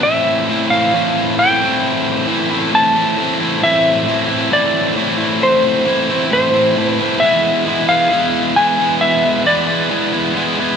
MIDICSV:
0, 0, Header, 1, 3, 480
1, 0, Start_track
1, 0, Key_signature, 0, "minor"
1, 0, Tempo, 898204
1, 20, Time_signature, 4, 2, 24, 8
1, 5754, End_track
2, 0, Start_track
2, 0, Title_t, "Electric slide guitar"
2, 0, Program_c, 0, 29
2, 17, Note_on_c, 0, 76, 95
2, 374, Note_off_c, 0, 76, 0
2, 376, Note_on_c, 0, 77, 86
2, 741, Note_off_c, 0, 77, 0
2, 743, Note_on_c, 0, 79, 89
2, 1198, Note_off_c, 0, 79, 0
2, 1469, Note_on_c, 0, 81, 126
2, 1942, Note_on_c, 0, 76, 119
2, 1956, Note_off_c, 0, 81, 0
2, 2422, Note_on_c, 0, 74, 90
2, 2432, Note_off_c, 0, 76, 0
2, 2876, Note_off_c, 0, 74, 0
2, 2903, Note_on_c, 0, 72, 108
2, 3357, Note_off_c, 0, 72, 0
2, 3384, Note_on_c, 0, 72, 106
2, 3688, Note_off_c, 0, 72, 0
2, 3688, Note_on_c, 0, 71, 106
2, 3837, Note_off_c, 0, 71, 0
2, 3847, Note_on_c, 0, 76, 117
2, 4213, Note_off_c, 0, 76, 0
2, 4215, Note_on_c, 0, 77, 95
2, 4553, Note_off_c, 0, 77, 0
2, 4576, Note_on_c, 0, 80, 105
2, 4798, Note_off_c, 0, 80, 0
2, 4815, Note_on_c, 0, 76, 113
2, 5038, Note_off_c, 0, 76, 0
2, 5059, Note_on_c, 0, 74, 98
2, 5754, Note_off_c, 0, 74, 0
2, 5754, End_track
3, 0, Start_track
3, 0, Title_t, "Distorted electric guitar"
3, 0, Program_c, 1, 30
3, 17, Note_on_c, 1, 45, 103
3, 24, Note_on_c, 1, 52, 106
3, 25, Note_on_c, 1, 57, 101
3, 31, Note_on_c, 1, 60, 102
3, 32, Note_on_c, 1, 64, 108
3, 255, Note_off_c, 1, 52, 0
3, 257, Note_on_c, 1, 52, 75
3, 260, Note_off_c, 1, 57, 0
3, 262, Note_on_c, 1, 57, 86
3, 265, Note_off_c, 1, 60, 0
3, 267, Note_on_c, 1, 60, 89
3, 271, Note_off_c, 1, 64, 0
3, 273, Note_on_c, 1, 64, 84
3, 378, Note_off_c, 1, 64, 0
3, 380, Note_on_c, 1, 64, 65
3, 387, Note_off_c, 1, 60, 0
3, 389, Note_on_c, 1, 60, 63
3, 393, Note_off_c, 1, 57, 0
3, 395, Note_on_c, 1, 57, 59
3, 496, Note_off_c, 1, 45, 0
3, 498, Note_off_c, 1, 52, 0
3, 498, Note_on_c, 1, 45, 83
3, 501, Note_on_c, 1, 52, 96
3, 503, Note_off_c, 1, 57, 0
3, 505, Note_on_c, 1, 57, 100
3, 508, Note_off_c, 1, 60, 0
3, 510, Note_off_c, 1, 64, 0
3, 510, Note_on_c, 1, 60, 90
3, 512, Note_on_c, 1, 64, 109
3, 737, Note_off_c, 1, 52, 0
3, 739, Note_on_c, 1, 52, 78
3, 744, Note_off_c, 1, 57, 0
3, 746, Note_on_c, 1, 57, 78
3, 750, Note_off_c, 1, 60, 0
3, 752, Note_on_c, 1, 60, 87
3, 754, Note_off_c, 1, 64, 0
3, 756, Note_on_c, 1, 64, 88
3, 860, Note_off_c, 1, 64, 0
3, 861, Note_off_c, 1, 60, 0
3, 862, Note_on_c, 1, 64, 74
3, 868, Note_on_c, 1, 60, 72
3, 870, Note_off_c, 1, 57, 0
3, 876, Note_on_c, 1, 57, 56
3, 1211, Note_off_c, 1, 52, 0
3, 1213, Note_off_c, 1, 57, 0
3, 1213, Note_on_c, 1, 52, 77
3, 1218, Note_off_c, 1, 60, 0
3, 1220, Note_on_c, 1, 57, 78
3, 1224, Note_on_c, 1, 60, 84
3, 1226, Note_off_c, 1, 64, 0
3, 1228, Note_on_c, 1, 64, 75
3, 1337, Note_off_c, 1, 64, 0
3, 1339, Note_on_c, 1, 64, 80
3, 1342, Note_off_c, 1, 60, 0
3, 1348, Note_off_c, 1, 57, 0
3, 1349, Note_on_c, 1, 60, 70
3, 1354, Note_on_c, 1, 57, 66
3, 1449, Note_off_c, 1, 45, 0
3, 1451, Note_on_c, 1, 45, 90
3, 1455, Note_off_c, 1, 57, 0
3, 1457, Note_off_c, 1, 52, 0
3, 1457, Note_off_c, 1, 60, 0
3, 1459, Note_on_c, 1, 52, 103
3, 1461, Note_on_c, 1, 57, 106
3, 1464, Note_on_c, 1, 60, 102
3, 1467, Note_off_c, 1, 64, 0
3, 1469, Note_on_c, 1, 64, 109
3, 1574, Note_off_c, 1, 64, 0
3, 1576, Note_off_c, 1, 60, 0
3, 1576, Note_on_c, 1, 64, 83
3, 1582, Note_off_c, 1, 57, 0
3, 1582, Note_on_c, 1, 60, 67
3, 1589, Note_on_c, 1, 57, 66
3, 1690, Note_off_c, 1, 57, 0
3, 1692, Note_off_c, 1, 52, 0
3, 1694, Note_on_c, 1, 52, 80
3, 1696, Note_on_c, 1, 57, 88
3, 1698, Note_off_c, 1, 60, 0
3, 1704, Note_on_c, 1, 60, 88
3, 1706, Note_off_c, 1, 64, 0
3, 1708, Note_on_c, 1, 64, 84
3, 1813, Note_off_c, 1, 45, 0
3, 1813, Note_off_c, 1, 60, 0
3, 1813, Note_off_c, 1, 64, 0
3, 1815, Note_on_c, 1, 64, 80
3, 1819, Note_on_c, 1, 60, 75
3, 1824, Note_off_c, 1, 57, 0
3, 1830, Note_on_c, 1, 57, 65
3, 1933, Note_on_c, 1, 45, 103
3, 1935, Note_off_c, 1, 52, 0
3, 1937, Note_off_c, 1, 57, 0
3, 1938, Note_on_c, 1, 52, 109
3, 1942, Note_off_c, 1, 60, 0
3, 1944, Note_on_c, 1, 57, 102
3, 1948, Note_off_c, 1, 64, 0
3, 1948, Note_on_c, 1, 60, 111
3, 1950, Note_on_c, 1, 64, 125
3, 2170, Note_off_c, 1, 52, 0
3, 2172, Note_on_c, 1, 52, 79
3, 2173, Note_off_c, 1, 57, 0
3, 2176, Note_off_c, 1, 60, 0
3, 2179, Note_on_c, 1, 57, 85
3, 2183, Note_on_c, 1, 60, 88
3, 2184, Note_off_c, 1, 64, 0
3, 2186, Note_on_c, 1, 64, 83
3, 2287, Note_off_c, 1, 64, 0
3, 2289, Note_on_c, 1, 64, 84
3, 2290, Note_off_c, 1, 60, 0
3, 2296, Note_off_c, 1, 57, 0
3, 2297, Note_on_c, 1, 60, 69
3, 2303, Note_on_c, 1, 57, 59
3, 2404, Note_off_c, 1, 45, 0
3, 2410, Note_on_c, 1, 45, 95
3, 2412, Note_off_c, 1, 57, 0
3, 2413, Note_off_c, 1, 52, 0
3, 2414, Note_off_c, 1, 60, 0
3, 2415, Note_on_c, 1, 52, 95
3, 2419, Note_on_c, 1, 57, 111
3, 2420, Note_on_c, 1, 60, 98
3, 2422, Note_off_c, 1, 64, 0
3, 2425, Note_on_c, 1, 64, 110
3, 2650, Note_off_c, 1, 52, 0
3, 2652, Note_on_c, 1, 52, 79
3, 2653, Note_off_c, 1, 57, 0
3, 2657, Note_off_c, 1, 60, 0
3, 2660, Note_on_c, 1, 57, 84
3, 2663, Note_on_c, 1, 60, 86
3, 2666, Note_off_c, 1, 64, 0
3, 2668, Note_on_c, 1, 64, 92
3, 2763, Note_off_c, 1, 64, 0
3, 2769, Note_on_c, 1, 64, 83
3, 2771, Note_off_c, 1, 60, 0
3, 2777, Note_off_c, 1, 57, 0
3, 2777, Note_on_c, 1, 60, 69
3, 2784, Note_on_c, 1, 57, 71
3, 2892, Note_off_c, 1, 45, 0
3, 3013, Note_off_c, 1, 52, 0
3, 3127, Note_on_c, 1, 52, 75
3, 3129, Note_off_c, 1, 57, 0
3, 3132, Note_off_c, 1, 60, 0
3, 3136, Note_on_c, 1, 57, 78
3, 3137, Note_off_c, 1, 64, 0
3, 3138, Note_on_c, 1, 60, 78
3, 3144, Note_on_c, 1, 64, 88
3, 3245, Note_off_c, 1, 64, 0
3, 3252, Note_off_c, 1, 60, 0
3, 3252, Note_on_c, 1, 64, 83
3, 3258, Note_on_c, 1, 60, 76
3, 3259, Note_off_c, 1, 57, 0
3, 3266, Note_on_c, 1, 57, 68
3, 3370, Note_off_c, 1, 52, 0
3, 3372, Note_on_c, 1, 45, 109
3, 3376, Note_off_c, 1, 57, 0
3, 3376, Note_on_c, 1, 52, 99
3, 3377, Note_off_c, 1, 60, 0
3, 3381, Note_off_c, 1, 64, 0
3, 3382, Note_on_c, 1, 57, 112
3, 3383, Note_on_c, 1, 60, 117
3, 3387, Note_on_c, 1, 64, 113
3, 3486, Note_off_c, 1, 64, 0
3, 3492, Note_on_c, 1, 64, 82
3, 3495, Note_off_c, 1, 60, 0
3, 3501, Note_on_c, 1, 60, 72
3, 3502, Note_off_c, 1, 57, 0
3, 3508, Note_on_c, 1, 57, 72
3, 3615, Note_off_c, 1, 52, 0
3, 3620, Note_off_c, 1, 57, 0
3, 3622, Note_on_c, 1, 52, 81
3, 3623, Note_off_c, 1, 60, 0
3, 3626, Note_on_c, 1, 57, 84
3, 3630, Note_off_c, 1, 64, 0
3, 3630, Note_on_c, 1, 60, 82
3, 3636, Note_on_c, 1, 64, 77
3, 3730, Note_off_c, 1, 64, 0
3, 3733, Note_off_c, 1, 45, 0
3, 3736, Note_on_c, 1, 64, 92
3, 3740, Note_off_c, 1, 60, 0
3, 3744, Note_off_c, 1, 57, 0
3, 3747, Note_on_c, 1, 60, 76
3, 3750, Note_on_c, 1, 57, 62
3, 3840, Note_off_c, 1, 64, 0
3, 3843, Note_off_c, 1, 52, 0
3, 3845, Note_off_c, 1, 60, 0
3, 3847, Note_off_c, 1, 57, 0
3, 3855, Note_on_c, 1, 52, 108
3, 3863, Note_on_c, 1, 56, 113
3, 3864, Note_on_c, 1, 59, 114
3, 3873, Note_on_c, 1, 64, 105
3, 4086, Note_off_c, 1, 52, 0
3, 4092, Note_on_c, 1, 52, 82
3, 4095, Note_off_c, 1, 56, 0
3, 4101, Note_off_c, 1, 59, 0
3, 4101, Note_on_c, 1, 56, 86
3, 4103, Note_on_c, 1, 59, 83
3, 4104, Note_off_c, 1, 64, 0
3, 4111, Note_on_c, 1, 64, 91
3, 4205, Note_off_c, 1, 64, 0
3, 4212, Note_on_c, 1, 64, 72
3, 4218, Note_off_c, 1, 59, 0
3, 4220, Note_on_c, 1, 59, 71
3, 4222, Note_off_c, 1, 56, 0
3, 4228, Note_on_c, 1, 56, 74
3, 4324, Note_off_c, 1, 52, 0
3, 4330, Note_on_c, 1, 52, 92
3, 4331, Note_off_c, 1, 56, 0
3, 4337, Note_on_c, 1, 56, 105
3, 4339, Note_off_c, 1, 59, 0
3, 4340, Note_off_c, 1, 64, 0
3, 4342, Note_on_c, 1, 59, 116
3, 4346, Note_on_c, 1, 64, 127
3, 4565, Note_off_c, 1, 52, 0
3, 4571, Note_on_c, 1, 52, 81
3, 4572, Note_off_c, 1, 56, 0
3, 4578, Note_off_c, 1, 59, 0
3, 4578, Note_off_c, 1, 64, 0
3, 4578, Note_on_c, 1, 56, 90
3, 4581, Note_on_c, 1, 59, 84
3, 4585, Note_on_c, 1, 64, 93
3, 4686, Note_off_c, 1, 64, 0
3, 4692, Note_on_c, 1, 64, 72
3, 4697, Note_off_c, 1, 59, 0
3, 4700, Note_on_c, 1, 59, 66
3, 4701, Note_off_c, 1, 56, 0
3, 4707, Note_on_c, 1, 56, 65
3, 4933, Note_off_c, 1, 52, 0
3, 5052, Note_off_c, 1, 56, 0
3, 5053, Note_on_c, 1, 52, 82
3, 5059, Note_on_c, 1, 56, 77
3, 5062, Note_off_c, 1, 59, 0
3, 5062, Note_off_c, 1, 64, 0
3, 5064, Note_on_c, 1, 59, 79
3, 5068, Note_on_c, 1, 64, 95
3, 5164, Note_off_c, 1, 64, 0
3, 5171, Note_on_c, 1, 64, 77
3, 5178, Note_off_c, 1, 59, 0
3, 5180, Note_on_c, 1, 59, 74
3, 5181, Note_off_c, 1, 56, 0
3, 5188, Note_on_c, 1, 56, 70
3, 5285, Note_off_c, 1, 52, 0
3, 5290, Note_off_c, 1, 56, 0
3, 5291, Note_on_c, 1, 52, 100
3, 5296, Note_on_c, 1, 56, 104
3, 5299, Note_off_c, 1, 59, 0
3, 5299, Note_off_c, 1, 64, 0
3, 5301, Note_on_c, 1, 59, 100
3, 5306, Note_on_c, 1, 64, 110
3, 5404, Note_off_c, 1, 64, 0
3, 5411, Note_on_c, 1, 64, 73
3, 5418, Note_off_c, 1, 59, 0
3, 5420, Note_off_c, 1, 56, 0
3, 5420, Note_on_c, 1, 59, 69
3, 5426, Note_on_c, 1, 56, 69
3, 5526, Note_off_c, 1, 52, 0
3, 5532, Note_off_c, 1, 56, 0
3, 5532, Note_on_c, 1, 52, 72
3, 5538, Note_on_c, 1, 56, 71
3, 5540, Note_off_c, 1, 64, 0
3, 5542, Note_off_c, 1, 59, 0
3, 5544, Note_on_c, 1, 59, 81
3, 5546, Note_on_c, 1, 64, 78
3, 5653, Note_off_c, 1, 64, 0
3, 5660, Note_on_c, 1, 64, 78
3, 5665, Note_off_c, 1, 56, 0
3, 5665, Note_off_c, 1, 59, 0
3, 5668, Note_on_c, 1, 59, 74
3, 5671, Note_on_c, 1, 56, 67
3, 5754, Note_off_c, 1, 52, 0
3, 5754, Note_off_c, 1, 56, 0
3, 5754, Note_off_c, 1, 59, 0
3, 5754, Note_off_c, 1, 64, 0
3, 5754, End_track
0, 0, End_of_file